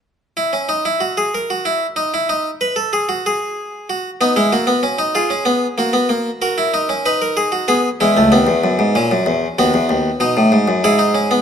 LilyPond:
<<
  \new Staff \with { instrumentName = "Harpsichord" } { \time 3/4 \key b \mixolydian \tempo 4 = 95 << { r8 e'16 cis'16 dis'16 e'16 fis'16 gis'16 ais'16 fis'16 e'8 | dis'16 e'16 dis'8 b'16 a'16 gis'16 fis'16 gis'4 | fis'8 dis'16 e'16 fis'4 gis'4 | fis'4 ais'4 b'16 ais'16 gis'16 fis'16 |
gis'8 e'2~ e'8 | fis'2 gis'4 | } \\ { r2. | r2. | r8 b16 gis16 ais16 b16 cis'16 dis'16 eis'16 cis'16 b8 | ais16 b16 ais8 fis'16 e'16 dis'16 cis'16 dis'4 |
b8 gis16 a16 b4 cis'4 | b4 dis'4 e'16 dis'16 cis'16 b16 | } >> }
  \new Staff \with { instrumentName = "Harpsichord" } { \clef bass \time 3/4 \key b \mixolydian r2. | r2. | r2. | r2. |
r8 e,16 cis,16 dis,16 e,16 fis,16 gis,16 ais,16 fis,16 e,8 | dis,16 e,16 dis,8 b,16 a,16 gis,16 fis,16 gis,4 | }
>>